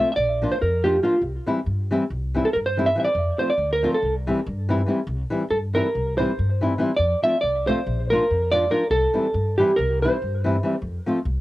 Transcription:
Already playing: hollow-body jazz guitar E5
0.12 hollow-body jazz guitar E5
0.16 upright bass A#1, hollow-body jazz guitar D5
0.42 nylon-string guitar F3 A#3 D4 F4
0.52 hollow-body jazz guitar C5
0.62 upright bass F2, hollow-body jazz guitar A#4
0.84 nylon-string guitar F3 A#3 D4 F4, hollow-body jazz guitar G4
1.03 nylon-string guitar F3 A#3 D4 F4, hollow-body jazz guitar F4
1.21 upright bass C2
1.46 nylon-string guitar E3 G3 C4 E4
1.66 upright bass G2
1.91 nylon-string guitar E3 G3 C4 E4
2.10 upright bass C2
2.34 nylon-string guitar E3 G3 C4 E4
2.45 hollow-body jazz guitar A4
2.53 upright bass G2, hollow-body jazz guitar A#4
2.66 hollow-body jazz guitar C5
2.77 nylon-string guitar E3 G3 C4 E4
2.86 hollow-body jazz guitar E5
2.95 nylon-string guitar E3 G3 C4 E4
3.00 hollow-body jazz guitar E5
3.05 hollow-body jazz guitar D5
3.15 upright bass F2
3.39 nylon-string guitar F3 A3 C4 F4, hollow-body jazz guitar C5
3.50 hollow-body jazz guitar D5
3.58 upright bass D2
3.73 hollow-body jazz guitar A#4
3.83 nylon-string guitar F3 A3 C4 F4
3.94 hollow-body jazz guitar A4
4.02 upright bass C2
4.27 nylon-string guitar E3 G3 C4 E4
4.46 upright bass G2
4.69 nylon-string guitar E3 G3 C4 E4
4.86 nylon-string guitar E3 G3 C4 E4
5.07 upright bass C2
5.30 nylon-string guitar E3 G3 C4 E4
5.50 upright bass G2, hollow-body jazz guitar A4
5.74 nylon-string guitar E3 G3 C4 E4, hollow-body jazz guitar A#4
5.95 upright bass C2
6.18 nylon-string guitar E3 G3 C4 E4, hollow-body jazz guitar C5
6.39 upright bass G2
6.61 nylon-string guitar E3 G3 C4 E4
6.78 nylon-string guitar E3 G3 C4 E4
6.96 upright bass F2, hollow-body jazz guitar D5
7.22 nylon-string guitar F3 A3 C4 F4, hollow-body jazz guitar E5
7.41 upright bass C2, hollow-body jazz guitar D5
7.67 nylon-string guitar F3 A3 C4 F4, hollow-body jazz guitar C5
7.86 upright bass A#1
8.10 nylon-string guitar F3 A#3 D4 F4, hollow-body jazz guitar A#4
8.30 upright bass F2
8.51 nylon-string guitar F3 A#3 D4 F4, hollow-body jazz guitar D5
8.70 nylon-string guitar F3 A#3 D4 F4, hollow-body jazz guitar A#4
8.90 upright bass C2, hollow-body jazz guitar A4
9.14 nylon-string guitar E3 G3 C4 E4
9.34 upright bass G2
9.58 nylon-string guitar E3 G3 C4 E4, hollow-body jazz guitar G4
9.76 upright bass C2, hollow-body jazz guitar A#4
10.02 nylon-string guitar E3 G3 C4 E4, hollow-body jazz guitar C5
10.22 upright bass G2
10.44 nylon-string guitar E3 G3 C4 E4
10.63 nylon-string guitar E3 G3 C4 E4
10.82 upright bass F2
11.06 nylon-string guitar F3 A3 C4 F4
11.25 upright bass C2

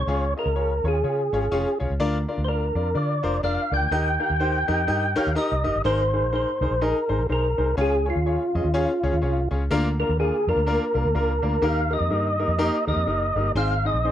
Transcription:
Already playing: tonewheel organ C#5
0.07 fingered electric bass C#2, grand piano C#3 C#4 F4 G#4 C#5
0.37 grand piano C#4 F4 G#4 D#5, tonewheel organ A#4
0.46 fingered electric bass C#2
0.55 grand piano C#4 F4 G#4 C#5
0.84 fingered electric bass D#2, grand piano C#4 F4 G#4 C#5
0.88 tonewheel organ G#4
1.04 fingered electric bass C#3, grand piano C#4 F4 G#4 C#5
1.33 fingered electric bass G#1, grand piano C#4 F4 G#4 C#5
1.52 fingered electric bass F1, grand piano C#4 F4 G#4 C#5
1.80 fingered electric bass C2, grand piano C#4 F4 G#4 C#5
1.90 fingered electric bass C#2
2.00 fingered electric bass D2, grand piano D3 D4 F4 A#4 D5
2.28 grand piano D4 F4 A#4 D5
2.38 fingered electric bass D2
2.44 grand piano D4 F4 A#4 D5, tonewheel organ C5
2.48 tonewheel organ A#4
2.75 fingered electric bass F2, grand piano D4 F4 A#4 D5
2.94 fingered electric bass D3, grand piano D4 F4 A#4 D5, tonewheel organ D5
3.23 fingered electric bass F1, grand piano D4 F4 A#4 C5
3.43 fingered electric bass F1, grand piano D4 F4 A#4 D5, tonewheel organ F5
3.72 fingered electric bass C#2, grand piano D4 F4 A#4 D5, tonewheel organ G5
3.82 fingered electric bass D2
3.91 fingered electric bass D#2, grand piano D#3 D#4 G4 A#4 D#5
4.19 grand piano D#4 G4 A#4 F5
4.30 fingered electric bass D#2
4.40 grand piano D#4 G4 A#4 C5
4.68 fingered electric bass F2, grand piano D#4 G4 A#4 D#5
4.87 fingered electric bass G2, grand piano D#4 G4 A#4 D#5
5.16 grand piano D#4 G4 A#4 C#5, tonewheel organ F5, muted fingered electric bass stroke
5.27 fingered electric bass D#2
5.35 grand piano D#4 G4 A#4 D#5 A#5, tonewheel organ D#5
5.52 fingered electric bass C2
5.64 fingered electric bass F#1, grand piano D#4 G4 A#4 D#5
5.76 fingered electric bass G1
5.84 fingered electric bass G#1, grand piano G#2 D#4 G#4 A#4 C5, tonewheel organ C5
6.13 grand piano D#4 G#4 A#4 C5
6.23 fingered electric bass A#1
6.32 grand piano D#4 G#4 A#4 C5, tonewheel organ C5
6.61 fingered electric bass C2, grand piano D#4 G#4 A#4 C5
6.71 fingered electric bass A#1
6.81 grand piano D#4 G#4 A#4 D#5, tonewheel organ A#4
7.09 fingered electric bass G#1, grand piano D#4 G#4 A#4 C5
7.19 fingered electric bass A#1
7.29 fingered electric bass B1, grand piano D#4 G#4 A#4 C5, tonewheel organ A#4
7.58 fingered electric bass C2, grand piano D#4 G#4 A#4 C5
7.77 fingered electric bass C#2, grand piano C#3 C#4 F4 G#4 C#5
7.81 tonewheel organ G#4
8.05 grand piano C#4 F4 G#4 C#5
8.10 tonewheel organ F4
8.16 fingered electric bass D#2
8.26 grand piano C#4 F4 G#4 C#5
8.55 fingered electric bass F2, grand piano C#4 F4 G#4 D#5
8.64 fingered electric bass D#2
8.74 grand piano C#4 F4 G#4 C#5
9.03 fingered electric bass C#2, grand piano C#4 F4 G#4 C#5
9.13 fingered electric bass D#2
9.22 fingered electric bass C2, grand piano C#4 F4 G#4 C#5
9.51 fingered electric bass C#2, grand piano C#4 F4 G#4 C#5
9.71 fingered electric bass D2, grand piano D3 A#3 D4 F4 A#4
9.99 grand piano A#3 D4 F4 A#4, tonewheel organ A#4
10.09 fingered electric bass D#2
10.19 grand piano A#3 D4 F4 A#4, tonewheel organ G#4
10.47 fingered electric bass F2, grand piano A#3 D4 F4 A#4, tonewheel organ A#4
10.56 fingered electric bass D2
10.66 grand piano A#3 D4 F4 A#4
10.94 fingered electric bass C2, grand piano A#3 D4 F4 A#4
11.05 fingered electric bass D2
11.14 fingered electric bass C#2, grand piano A#3 D4 F4 A#4
11.42 fingered electric bass D2, grand piano A#3 D4 F4 A#4
11.62 fingered electric bass D#2, grand piano D#3 A#3 D#4 G4 A#4, tonewheel organ F5
11.90 grand piano A#3 D#4 G4 A#4, tonewheel organ D#5
12.00 fingered electric bass F2
12.10 fingered electric bass G2, grand piano A#3 D#4 G4 A#4
12.39 grand piano A#3 D#4 G4 A#4
12.48 fingered electric bass F2
12.59 grand piano A#3 D#4 G4 A#4
12.87 fingered electric bass D#2, grand piano A#3 D#4 G4 A#4, tonewheel organ D#5
12.96 fingered electric bass F2
13.06 fingered electric bass F#1, grand piano A#3 D#4 G4 A#4
13.36 fingered electric bass G1, grand piano A#3 D#4 G4 A#4
13.55 fingered electric bass G#1, grand piano G#2 C4 D#4 G#4 C5, tonewheel organ F5
13.84 grand piano C4 D#4 G#4 C5, tonewheel organ D#5
13.94 fingered electric bass A#1
14.04 grand piano C4 D#4 G#4 C5

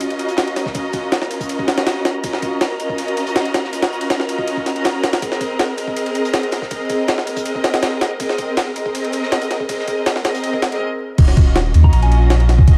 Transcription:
Already playing: string section C#4 F4 F#4 D#5, synth texture A#4 A#5
0.00 ride, shaker
0.10 ride
0.19 ride, shaker
0.28 closed hi-hat
0.37 snare, ride, shaker
0.48 ride
0.56 snare, ride, shaker
0.66 kick, snare
0.74 string section C#4 F4 F#4 D#5, kick, ride, shaker
0.93 kick, ride, shaker
1.12 snare, ride, shaker
1.22 snare
1.31 string section C#4 F4 F#4 D#5, ride, shaker
1.40 kick, closed hi-hat
1.49 ride, shaker
1.59 kick
1.68 snare, ride, shaker
1.78 snare, ride
1.86 snare, ride, shaker
2.05 snare, ride, shaker
2.24 string section C#4 F4 F#4 D#5, kick, ride, shaker
2.33 snare
2.42 kick, ride, shaker
2.61 snare, ride, shaker
2.80 string section C#4 F4 F#4 D#5, ride, shaker
2.89 kick
2.98 ride, shaker
3.08 ride
3.17 ride, shaker
3.27 closed hi-hat
3.36 snare, ride, shaker
3.45 ride
3.54 snare, ride, shaker
3.64 snare
3.73 string section C#4 F4 F#4 D#5, ride, shaker
3.82 snare, ride
3.93 shaker
4.01 ride
4.10 snare, ride, shaker
4.20 snare
4.29 string section C#4 F4 F#4 D#5, ride, shaker
4.39 kick
4.48 ride
4.57 kick
4.66 snare, ride, shaker
4.75 string section C#4 F4 F#4 D#5, ride
4.85 snare, ride, shaker
4.94 string section C#4 F4 F#4 D#5
5.03 snare, ride, shaker
5.13 snare, ride
5.22 string section C4 G#4 A#4 D#5, kick, ride, shaker
5.31 snare
5.41 kick, ride, shaker
5.59 snare, ride, shaker
5.78 string section C4 G#4 A#4 D#5, ride, shaker
5.88 kick
5.97 ride, shaker
6.06 ride
6.14 ride, shaker
6.25 closed hi-hat
6.33 snare, ride, shaker
6.43 ride
6.52 snare, ride, shaker
6.62 kick, snare
6.70 string section C4 G#4 A#4 D#5, kick, ride, shaker
6.89 kick, ride, shaker
7.07 snare, ride, shaker
7.18 snare
7.27 string section C4 G#4 A#4 D#5, ride, shaker
7.36 kick, closed hi-hat
7.45 ride, shaker
7.55 kick
7.64 snare, ride, shaker
7.74 snare, ride
7.82 snare, ride, shaker
8.01 snare, ride, shaker
8.20 string section C4 G#4 A#4 D#5, kick, ride, shaker
8.29 snare
8.38 kick, ride, shaker
8.57 snare, ride, shaker
8.76 string section C4 G#4 A#4 D#5, ride, shaker
8.86 kick
8.95 ride, shaker
9.04 ride
9.12 ride, shaker
9.23 snare
9.32 snare, ride, shaker
9.42 ride, shaker
9.51 snare, ride
9.60 kick
9.69 string section C4 G#4 A#4 D#5, kick, ride, shaker
9.79 snare
9.88 kick, ride, shaker
10.06 snare, ride, shaker
10.16 snare
10.24 string section C4 G#4 A#4 D#5, snare, ride, shaker
10.35 closed hi-hat
10.44 ride
10.53 kick
10.62 snare, ride, shaker
10.72 string section C4 G#4 A#4 D#5, ride
11.18 sub bass D#1, string section C#4 F4 F#4 D#5, kick, crash, ride
11.28 snare
11.37 kick, ride
11.56 snare, ride
11.74 sub bass D#2, string section C#4 F4 F#4 D#5, ride
11.84 synth bell A#5, kick
11.93 sub bass A#1, synth bell A#5, ride
12.02 synth bell G#5, ride
12.12 ride
12.30 snare, ride
12.40 ride
12.49 snare, ride
12.58 kick
12.67 sub bass D#1, string section C#4 F4 F#4 D#5, kick, ride

